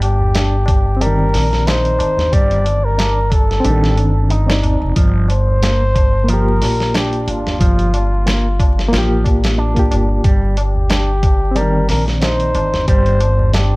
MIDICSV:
0, 0, Header, 1, 7, 480
1, 0, Start_track
1, 0, Tempo, 659341
1, 1693, Time_signature, 4, 2, 24, 8
1, 10018, End_track
2, 0, Start_track
2, 0, Title_t, "Muted trumpet"
2, 0, Program_c, 0, 59
2, 17, Note_on_c, 0, 67, 101
2, 738, Note_on_c, 0, 70, 112
2, 749, Note_off_c, 0, 67, 0
2, 1218, Note_on_c, 0, 72, 105
2, 1229, Note_off_c, 0, 70, 0
2, 1699, Note_on_c, 0, 74, 119
2, 1710, Note_off_c, 0, 72, 0
2, 2072, Note_on_c, 0, 70, 101
2, 2083, Note_off_c, 0, 74, 0
2, 2412, Note_on_c, 0, 69, 98
2, 2423, Note_off_c, 0, 70, 0
2, 3372, Note_off_c, 0, 69, 0
2, 3863, Note_on_c, 0, 72, 125
2, 4586, Note_on_c, 0, 70, 114
2, 4597, Note_off_c, 0, 72, 0
2, 5074, Note_on_c, 0, 67, 94
2, 5085, Note_off_c, 0, 70, 0
2, 5255, Note_off_c, 0, 67, 0
2, 5255, Note_on_c, 0, 67, 60
2, 5311, Note_on_c, 0, 65, 102
2, 5322, Note_off_c, 0, 67, 0
2, 6982, Note_off_c, 0, 65, 0
2, 7712, Note_on_c, 0, 67, 109
2, 8423, Note_on_c, 0, 70, 109
2, 8433, Note_off_c, 0, 67, 0
2, 8655, Note_off_c, 0, 70, 0
2, 8660, Note_on_c, 0, 70, 94
2, 8766, Note_off_c, 0, 70, 0
2, 8896, Note_on_c, 0, 72, 112
2, 9345, Note_off_c, 0, 72, 0
2, 9380, Note_on_c, 0, 72, 117
2, 9827, Note_off_c, 0, 72, 0
2, 9856, Note_on_c, 0, 67, 98
2, 10018, Note_off_c, 0, 67, 0
2, 10018, End_track
3, 0, Start_track
3, 0, Title_t, "Reed electric piano"
3, 0, Program_c, 1, 4
3, 703, Note_on_c, 1, 60, 76
3, 739, Note_on_c, 1, 74, 72
3, 774, Note_on_c, 1, 51, 87
3, 2612, Note_off_c, 1, 60, 0
3, 2622, Note_on_c, 1, 60, 92
3, 2630, Note_off_c, 1, 74, 0
3, 2647, Note_off_c, 1, 51, 0
3, 2655, Note_on_c, 1, 62, 88
3, 2692, Note_on_c, 1, 51, 104
3, 3222, Note_off_c, 1, 60, 0
3, 3239, Note_off_c, 1, 62, 0
3, 3249, Note_on_c, 1, 60, 75
3, 3258, Note_off_c, 1, 51, 0
3, 3263, Note_on_c, 1, 74, 62
3, 3280, Note_on_c, 1, 63, 77
3, 3592, Note_off_c, 1, 60, 0
3, 3599, Note_off_c, 1, 74, 0
3, 3608, Note_off_c, 1, 63, 0
3, 4543, Note_on_c, 1, 58, 78
3, 4575, Note_on_c, 1, 65, 71
3, 4611, Note_on_c, 1, 67, 88
3, 6452, Note_off_c, 1, 58, 0
3, 6468, Note_off_c, 1, 65, 0
3, 6468, Note_on_c, 1, 58, 97
3, 6486, Note_off_c, 1, 67, 0
3, 6500, Note_on_c, 1, 65, 87
3, 6538, Note_on_c, 1, 67, 109
3, 7065, Note_off_c, 1, 58, 0
3, 7082, Note_off_c, 1, 65, 0
3, 7094, Note_on_c, 1, 58, 73
3, 7100, Note_off_c, 1, 67, 0
3, 7112, Note_on_c, 1, 65, 69
3, 7129, Note_on_c, 1, 67, 84
3, 7434, Note_off_c, 1, 58, 0
3, 7444, Note_off_c, 1, 65, 0
3, 7452, Note_off_c, 1, 67, 0
3, 8381, Note_on_c, 1, 60, 76
3, 8418, Note_on_c, 1, 74, 70
3, 8454, Note_on_c, 1, 51, 90
3, 10018, Note_off_c, 1, 51, 0
3, 10018, Note_off_c, 1, 60, 0
3, 10018, Note_off_c, 1, 74, 0
3, 10018, End_track
4, 0, Start_track
4, 0, Title_t, "Clean electric guitar"
4, 0, Program_c, 2, 27
4, 255, Note_on_c, 2, 62, 75
4, 401, Note_off_c, 2, 62, 0
4, 734, Note_on_c, 2, 55, 94
4, 962, Note_off_c, 2, 55, 0
4, 1215, Note_on_c, 2, 63, 73
4, 1672, Note_off_c, 2, 63, 0
4, 1691, Note_on_c, 2, 55, 102
4, 1921, Note_off_c, 2, 55, 0
4, 2170, Note_on_c, 2, 62, 76
4, 2318, Note_off_c, 2, 62, 0
4, 2652, Note_on_c, 2, 55, 96
4, 2881, Note_off_c, 2, 55, 0
4, 3132, Note_on_c, 2, 63, 79
4, 3590, Note_off_c, 2, 63, 0
4, 3610, Note_on_c, 2, 53, 103
4, 3841, Note_off_c, 2, 53, 0
4, 4095, Note_on_c, 2, 58, 79
4, 4241, Note_off_c, 2, 58, 0
4, 4575, Note_on_c, 2, 53, 94
4, 4803, Note_off_c, 2, 53, 0
4, 5054, Note_on_c, 2, 62, 79
4, 5512, Note_off_c, 2, 62, 0
4, 5533, Note_on_c, 2, 53, 99
4, 5762, Note_off_c, 2, 53, 0
4, 6015, Note_on_c, 2, 58, 80
4, 6160, Note_off_c, 2, 58, 0
4, 6495, Note_on_c, 2, 53, 101
4, 6723, Note_off_c, 2, 53, 0
4, 6974, Note_on_c, 2, 62, 82
4, 7431, Note_off_c, 2, 62, 0
4, 7456, Note_on_c, 2, 55, 99
4, 7683, Note_off_c, 2, 55, 0
4, 7933, Note_on_c, 2, 62, 82
4, 8080, Note_off_c, 2, 62, 0
4, 8411, Note_on_c, 2, 55, 99
4, 8641, Note_off_c, 2, 55, 0
4, 8895, Note_on_c, 2, 63, 76
4, 9352, Note_off_c, 2, 63, 0
4, 9375, Note_on_c, 2, 55, 106
4, 9603, Note_off_c, 2, 55, 0
4, 9854, Note_on_c, 2, 62, 83
4, 10000, Note_off_c, 2, 62, 0
4, 10018, End_track
5, 0, Start_track
5, 0, Title_t, "Upright bass"
5, 0, Program_c, 3, 32
5, 0, Note_on_c, 3, 31, 91
5, 953, Note_off_c, 3, 31, 0
5, 978, Note_on_c, 3, 34, 89
5, 1435, Note_off_c, 3, 34, 0
5, 1456, Note_on_c, 3, 31, 82
5, 1668, Note_off_c, 3, 31, 0
5, 1697, Note_on_c, 3, 31, 97
5, 2634, Note_off_c, 3, 31, 0
5, 2654, Note_on_c, 3, 33, 90
5, 2894, Note_off_c, 3, 33, 0
5, 2894, Note_on_c, 3, 31, 110
5, 3479, Note_off_c, 3, 31, 0
5, 3507, Note_on_c, 3, 29, 92
5, 3601, Note_off_c, 3, 29, 0
5, 3616, Note_on_c, 3, 31, 91
5, 4793, Note_off_c, 3, 31, 0
5, 4818, Note_on_c, 3, 34, 91
5, 5275, Note_off_c, 3, 34, 0
5, 5296, Note_on_c, 3, 31, 84
5, 5508, Note_off_c, 3, 31, 0
5, 5537, Note_on_c, 3, 31, 93
5, 6474, Note_off_c, 3, 31, 0
5, 6499, Note_on_c, 3, 33, 92
5, 7195, Note_off_c, 3, 33, 0
5, 7218, Note_on_c, 3, 31, 98
5, 7429, Note_off_c, 3, 31, 0
5, 7458, Note_on_c, 3, 31, 96
5, 8635, Note_off_c, 3, 31, 0
5, 8657, Note_on_c, 3, 34, 92
5, 9114, Note_off_c, 3, 34, 0
5, 9135, Note_on_c, 3, 31, 91
5, 9348, Note_off_c, 3, 31, 0
5, 9376, Note_on_c, 3, 31, 99
5, 10018, Note_off_c, 3, 31, 0
5, 10018, End_track
6, 0, Start_track
6, 0, Title_t, "Tabla"
6, 13, Note_on_c, 9, 60, 94
6, 86, Note_off_c, 9, 60, 0
6, 142, Note_on_c, 9, 64, 59
6, 143, Note_on_c, 9, 60, 38
6, 214, Note_off_c, 9, 64, 0
6, 216, Note_off_c, 9, 60, 0
6, 250, Note_on_c, 9, 60, 51
6, 323, Note_off_c, 9, 60, 0
6, 382, Note_on_c, 9, 60, 31
6, 455, Note_off_c, 9, 60, 0
6, 478, Note_on_c, 9, 60, 106
6, 551, Note_off_c, 9, 60, 0
6, 626, Note_on_c, 9, 60, 36
6, 699, Note_off_c, 9, 60, 0
6, 733, Note_on_c, 9, 60, 61
6, 806, Note_off_c, 9, 60, 0
6, 857, Note_on_c, 9, 60, 28
6, 930, Note_off_c, 9, 60, 0
6, 972, Note_on_c, 9, 60, 95
6, 1045, Note_off_c, 9, 60, 0
6, 1104, Note_on_c, 9, 60, 34
6, 1177, Note_off_c, 9, 60, 0
6, 1211, Note_on_c, 9, 60, 59
6, 1284, Note_off_c, 9, 60, 0
6, 1348, Note_on_c, 9, 60, 29
6, 1421, Note_off_c, 9, 60, 0
6, 1447, Note_on_c, 9, 60, 85
6, 1519, Note_off_c, 9, 60, 0
6, 1581, Note_on_c, 9, 64, 77
6, 1585, Note_on_c, 9, 60, 44
6, 1654, Note_off_c, 9, 64, 0
6, 1658, Note_off_c, 9, 60, 0
6, 1688, Note_on_c, 9, 60, 53
6, 1761, Note_off_c, 9, 60, 0
6, 1925, Note_on_c, 9, 60, 86
6, 1997, Note_off_c, 9, 60, 0
6, 2055, Note_on_c, 9, 60, 42
6, 2128, Note_off_c, 9, 60, 0
6, 2163, Note_on_c, 9, 60, 53
6, 2235, Note_off_c, 9, 60, 0
6, 2301, Note_on_c, 9, 60, 29
6, 2374, Note_off_c, 9, 60, 0
6, 2403, Note_on_c, 9, 60, 94
6, 2476, Note_off_c, 9, 60, 0
6, 2541, Note_on_c, 9, 60, 41
6, 2613, Note_off_c, 9, 60, 0
6, 2649, Note_on_c, 9, 60, 51
6, 2722, Note_off_c, 9, 60, 0
6, 2887, Note_on_c, 9, 60, 88
6, 2959, Note_off_c, 9, 60, 0
6, 3018, Note_on_c, 9, 60, 36
6, 3091, Note_off_c, 9, 60, 0
6, 3123, Note_on_c, 9, 60, 57
6, 3195, Note_off_c, 9, 60, 0
6, 3259, Note_on_c, 9, 60, 25
6, 3332, Note_off_c, 9, 60, 0
6, 3368, Note_on_c, 9, 60, 104
6, 3370, Note_on_c, 9, 64, 68
6, 3441, Note_off_c, 9, 60, 0
6, 3442, Note_off_c, 9, 64, 0
6, 3506, Note_on_c, 9, 60, 38
6, 3578, Note_off_c, 9, 60, 0
6, 3610, Note_on_c, 9, 60, 56
6, 3683, Note_off_c, 9, 60, 0
6, 3748, Note_on_c, 9, 60, 28
6, 3821, Note_off_c, 9, 60, 0
6, 3846, Note_on_c, 9, 60, 80
6, 3919, Note_off_c, 9, 60, 0
6, 3987, Note_on_c, 9, 60, 44
6, 3987, Note_on_c, 9, 64, 52
6, 4060, Note_off_c, 9, 60, 0
6, 4060, Note_off_c, 9, 64, 0
6, 4093, Note_on_c, 9, 60, 52
6, 4166, Note_off_c, 9, 60, 0
6, 4227, Note_on_c, 9, 60, 26
6, 4300, Note_off_c, 9, 60, 0
6, 4328, Note_on_c, 9, 60, 84
6, 4400, Note_off_c, 9, 60, 0
6, 4465, Note_on_c, 9, 60, 39
6, 4537, Note_off_c, 9, 60, 0
6, 4579, Note_on_c, 9, 60, 59
6, 4651, Note_off_c, 9, 60, 0
6, 4820, Note_on_c, 9, 60, 78
6, 4893, Note_off_c, 9, 60, 0
6, 4952, Note_on_c, 9, 60, 38
6, 5025, Note_off_c, 9, 60, 0
6, 5058, Note_on_c, 9, 60, 53
6, 5131, Note_off_c, 9, 60, 0
6, 5193, Note_on_c, 9, 60, 28
6, 5266, Note_off_c, 9, 60, 0
6, 5299, Note_on_c, 9, 60, 83
6, 5372, Note_off_c, 9, 60, 0
6, 5432, Note_on_c, 9, 64, 75
6, 5433, Note_on_c, 9, 60, 42
6, 5505, Note_off_c, 9, 64, 0
6, 5506, Note_off_c, 9, 60, 0
6, 5540, Note_on_c, 9, 60, 51
6, 5613, Note_off_c, 9, 60, 0
6, 5666, Note_on_c, 9, 60, 27
6, 5739, Note_off_c, 9, 60, 0
6, 5779, Note_on_c, 9, 60, 82
6, 5852, Note_off_c, 9, 60, 0
6, 5917, Note_on_c, 9, 60, 41
6, 5990, Note_off_c, 9, 60, 0
6, 6021, Note_on_c, 9, 60, 49
6, 6094, Note_off_c, 9, 60, 0
6, 6150, Note_on_c, 9, 60, 28
6, 6223, Note_off_c, 9, 60, 0
6, 6257, Note_on_c, 9, 60, 91
6, 6330, Note_off_c, 9, 60, 0
6, 6391, Note_on_c, 9, 60, 35
6, 6464, Note_off_c, 9, 60, 0
6, 6500, Note_on_c, 9, 60, 54
6, 6573, Note_off_c, 9, 60, 0
6, 6630, Note_on_c, 9, 60, 25
6, 6703, Note_off_c, 9, 60, 0
6, 6729, Note_on_c, 9, 60, 81
6, 6801, Note_off_c, 9, 60, 0
6, 6871, Note_on_c, 9, 60, 34
6, 6944, Note_off_c, 9, 60, 0
6, 6976, Note_on_c, 9, 60, 56
6, 7049, Note_off_c, 9, 60, 0
6, 7215, Note_on_c, 9, 60, 101
6, 7221, Note_on_c, 9, 64, 57
6, 7288, Note_off_c, 9, 60, 0
6, 7294, Note_off_c, 9, 64, 0
6, 7349, Note_on_c, 9, 60, 41
6, 7421, Note_off_c, 9, 60, 0
6, 7454, Note_on_c, 9, 60, 53
6, 7527, Note_off_c, 9, 60, 0
6, 7581, Note_on_c, 9, 60, 26
6, 7654, Note_off_c, 9, 60, 0
6, 7698, Note_on_c, 9, 60, 94
6, 7771, Note_off_c, 9, 60, 0
6, 7825, Note_on_c, 9, 64, 60
6, 7826, Note_on_c, 9, 60, 38
6, 7898, Note_off_c, 9, 64, 0
6, 7899, Note_off_c, 9, 60, 0
6, 7933, Note_on_c, 9, 60, 47
6, 8006, Note_off_c, 9, 60, 0
6, 8064, Note_on_c, 9, 60, 27
6, 8137, Note_off_c, 9, 60, 0
6, 8176, Note_on_c, 9, 60, 82
6, 8249, Note_off_c, 9, 60, 0
6, 8308, Note_on_c, 9, 60, 34
6, 8381, Note_off_c, 9, 60, 0
6, 8413, Note_on_c, 9, 60, 59
6, 8486, Note_off_c, 9, 60, 0
6, 8650, Note_on_c, 9, 60, 81
6, 8723, Note_off_c, 9, 60, 0
6, 8793, Note_on_c, 9, 60, 37
6, 8866, Note_off_c, 9, 60, 0
6, 8888, Note_on_c, 9, 60, 48
6, 8961, Note_off_c, 9, 60, 0
6, 9136, Note_on_c, 9, 60, 88
6, 9209, Note_off_c, 9, 60, 0
6, 9266, Note_on_c, 9, 60, 36
6, 9266, Note_on_c, 9, 64, 80
6, 9338, Note_off_c, 9, 60, 0
6, 9339, Note_off_c, 9, 64, 0
6, 9379, Note_on_c, 9, 60, 54
6, 9452, Note_off_c, 9, 60, 0
6, 9611, Note_on_c, 9, 60, 84
6, 9684, Note_off_c, 9, 60, 0
6, 9745, Note_on_c, 9, 64, 65
6, 9753, Note_on_c, 9, 60, 40
6, 9818, Note_off_c, 9, 64, 0
6, 9825, Note_off_c, 9, 60, 0
6, 9856, Note_on_c, 9, 60, 48
6, 9929, Note_off_c, 9, 60, 0
6, 10018, End_track
7, 0, Start_track
7, 0, Title_t, "Drums"
7, 13, Note_on_c, 9, 42, 72
7, 86, Note_off_c, 9, 42, 0
7, 251, Note_on_c, 9, 42, 91
7, 258, Note_on_c, 9, 38, 126
7, 324, Note_off_c, 9, 42, 0
7, 331, Note_off_c, 9, 38, 0
7, 495, Note_on_c, 9, 36, 104
7, 495, Note_on_c, 9, 42, 75
7, 568, Note_off_c, 9, 36, 0
7, 568, Note_off_c, 9, 42, 0
7, 738, Note_on_c, 9, 42, 90
7, 810, Note_off_c, 9, 42, 0
7, 976, Note_on_c, 9, 46, 81
7, 982, Note_on_c, 9, 38, 58
7, 1048, Note_off_c, 9, 46, 0
7, 1055, Note_off_c, 9, 38, 0
7, 1113, Note_on_c, 9, 38, 39
7, 1186, Note_off_c, 9, 38, 0
7, 1217, Note_on_c, 9, 42, 85
7, 1224, Note_on_c, 9, 38, 120
7, 1290, Note_off_c, 9, 42, 0
7, 1297, Note_off_c, 9, 38, 0
7, 1347, Note_on_c, 9, 42, 47
7, 1420, Note_off_c, 9, 42, 0
7, 1456, Note_on_c, 9, 42, 74
7, 1529, Note_off_c, 9, 42, 0
7, 1594, Note_on_c, 9, 38, 50
7, 1667, Note_off_c, 9, 38, 0
7, 1695, Note_on_c, 9, 36, 107
7, 1695, Note_on_c, 9, 42, 87
7, 1768, Note_off_c, 9, 36, 0
7, 1768, Note_off_c, 9, 42, 0
7, 1827, Note_on_c, 9, 42, 44
7, 1899, Note_off_c, 9, 42, 0
7, 1935, Note_on_c, 9, 42, 66
7, 2008, Note_off_c, 9, 42, 0
7, 2175, Note_on_c, 9, 42, 90
7, 2182, Note_on_c, 9, 38, 111
7, 2248, Note_off_c, 9, 42, 0
7, 2254, Note_off_c, 9, 38, 0
7, 2415, Note_on_c, 9, 36, 97
7, 2415, Note_on_c, 9, 42, 71
7, 2487, Note_off_c, 9, 42, 0
7, 2488, Note_off_c, 9, 36, 0
7, 2555, Note_on_c, 9, 38, 45
7, 2627, Note_off_c, 9, 38, 0
7, 2653, Note_on_c, 9, 42, 96
7, 2726, Note_off_c, 9, 42, 0
7, 2794, Note_on_c, 9, 38, 46
7, 2866, Note_off_c, 9, 38, 0
7, 2893, Note_on_c, 9, 42, 65
7, 2966, Note_off_c, 9, 42, 0
7, 3133, Note_on_c, 9, 42, 79
7, 3205, Note_off_c, 9, 42, 0
7, 3273, Note_on_c, 9, 38, 117
7, 3346, Note_off_c, 9, 38, 0
7, 3374, Note_on_c, 9, 42, 70
7, 3447, Note_off_c, 9, 42, 0
7, 3612, Note_on_c, 9, 42, 93
7, 3614, Note_on_c, 9, 36, 105
7, 3684, Note_off_c, 9, 42, 0
7, 3686, Note_off_c, 9, 36, 0
7, 3856, Note_on_c, 9, 42, 71
7, 3929, Note_off_c, 9, 42, 0
7, 4095, Note_on_c, 9, 42, 94
7, 4102, Note_on_c, 9, 38, 116
7, 4168, Note_off_c, 9, 42, 0
7, 4174, Note_off_c, 9, 38, 0
7, 4336, Note_on_c, 9, 36, 101
7, 4337, Note_on_c, 9, 42, 73
7, 4409, Note_off_c, 9, 36, 0
7, 4410, Note_off_c, 9, 42, 0
7, 4575, Note_on_c, 9, 42, 92
7, 4648, Note_off_c, 9, 42, 0
7, 4817, Note_on_c, 9, 46, 75
7, 4824, Note_on_c, 9, 38, 57
7, 4890, Note_off_c, 9, 46, 0
7, 4896, Note_off_c, 9, 38, 0
7, 4953, Note_on_c, 9, 38, 39
7, 5026, Note_off_c, 9, 38, 0
7, 5055, Note_on_c, 9, 42, 85
7, 5062, Note_on_c, 9, 38, 112
7, 5128, Note_off_c, 9, 42, 0
7, 5135, Note_off_c, 9, 38, 0
7, 5188, Note_on_c, 9, 42, 44
7, 5261, Note_off_c, 9, 42, 0
7, 5297, Note_on_c, 9, 42, 76
7, 5370, Note_off_c, 9, 42, 0
7, 5435, Note_on_c, 9, 38, 48
7, 5508, Note_off_c, 9, 38, 0
7, 5536, Note_on_c, 9, 36, 104
7, 5537, Note_on_c, 9, 42, 89
7, 5609, Note_off_c, 9, 36, 0
7, 5610, Note_off_c, 9, 42, 0
7, 5670, Note_on_c, 9, 42, 43
7, 5743, Note_off_c, 9, 42, 0
7, 5778, Note_on_c, 9, 42, 73
7, 5851, Note_off_c, 9, 42, 0
7, 6019, Note_on_c, 9, 42, 93
7, 6026, Note_on_c, 9, 38, 119
7, 6092, Note_off_c, 9, 42, 0
7, 6098, Note_off_c, 9, 38, 0
7, 6258, Note_on_c, 9, 36, 98
7, 6261, Note_on_c, 9, 42, 73
7, 6331, Note_off_c, 9, 36, 0
7, 6334, Note_off_c, 9, 42, 0
7, 6400, Note_on_c, 9, 38, 47
7, 6472, Note_off_c, 9, 38, 0
7, 6500, Note_on_c, 9, 42, 87
7, 6507, Note_on_c, 9, 38, 111
7, 6573, Note_off_c, 9, 42, 0
7, 6580, Note_off_c, 9, 38, 0
7, 6738, Note_on_c, 9, 36, 87
7, 6741, Note_on_c, 9, 42, 60
7, 6811, Note_off_c, 9, 36, 0
7, 6814, Note_off_c, 9, 42, 0
7, 6870, Note_on_c, 9, 42, 70
7, 6876, Note_on_c, 9, 38, 99
7, 6943, Note_off_c, 9, 42, 0
7, 6949, Note_off_c, 9, 38, 0
7, 7108, Note_on_c, 9, 36, 85
7, 7109, Note_on_c, 9, 42, 63
7, 7181, Note_off_c, 9, 36, 0
7, 7182, Note_off_c, 9, 42, 0
7, 7219, Note_on_c, 9, 42, 73
7, 7291, Note_off_c, 9, 42, 0
7, 7456, Note_on_c, 9, 36, 111
7, 7457, Note_on_c, 9, 42, 87
7, 7529, Note_off_c, 9, 36, 0
7, 7530, Note_off_c, 9, 42, 0
7, 7695, Note_on_c, 9, 42, 74
7, 7767, Note_off_c, 9, 42, 0
7, 7932, Note_on_c, 9, 42, 87
7, 7939, Note_on_c, 9, 38, 123
7, 8005, Note_off_c, 9, 42, 0
7, 8012, Note_off_c, 9, 38, 0
7, 8175, Note_on_c, 9, 36, 100
7, 8175, Note_on_c, 9, 42, 75
7, 8247, Note_off_c, 9, 36, 0
7, 8247, Note_off_c, 9, 42, 0
7, 8414, Note_on_c, 9, 42, 92
7, 8487, Note_off_c, 9, 42, 0
7, 8654, Note_on_c, 9, 46, 83
7, 8661, Note_on_c, 9, 38, 54
7, 8727, Note_off_c, 9, 46, 0
7, 8733, Note_off_c, 9, 38, 0
7, 8794, Note_on_c, 9, 38, 40
7, 8866, Note_off_c, 9, 38, 0
7, 8893, Note_on_c, 9, 42, 82
7, 8899, Note_on_c, 9, 38, 111
7, 8966, Note_off_c, 9, 42, 0
7, 8972, Note_off_c, 9, 38, 0
7, 9026, Note_on_c, 9, 42, 46
7, 9098, Note_off_c, 9, 42, 0
7, 9133, Note_on_c, 9, 42, 69
7, 9206, Note_off_c, 9, 42, 0
7, 9272, Note_on_c, 9, 38, 49
7, 9345, Note_off_c, 9, 38, 0
7, 9375, Note_on_c, 9, 36, 111
7, 9375, Note_on_c, 9, 42, 88
7, 9448, Note_off_c, 9, 36, 0
7, 9448, Note_off_c, 9, 42, 0
7, 9507, Note_on_c, 9, 42, 43
7, 9579, Note_off_c, 9, 42, 0
7, 9613, Note_on_c, 9, 42, 73
7, 9686, Note_off_c, 9, 42, 0
7, 9853, Note_on_c, 9, 42, 85
7, 9860, Note_on_c, 9, 38, 117
7, 9926, Note_off_c, 9, 42, 0
7, 9933, Note_off_c, 9, 38, 0
7, 10018, End_track
0, 0, End_of_file